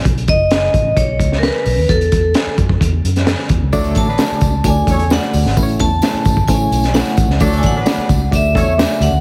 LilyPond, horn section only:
\new Staff \with { instrumentName = "Horn section" } { \time 4/4 \key d \lydian \tempo 4 = 131 r1 | r1 | <fis a d' a'>8. <fis b d' b'>8. r4 <cis' a' cis''>8 r4 | r1 |
<fis a d' a'>8. <fis b d' b'>8. r4 <cis' a' cis''>8 r4 | }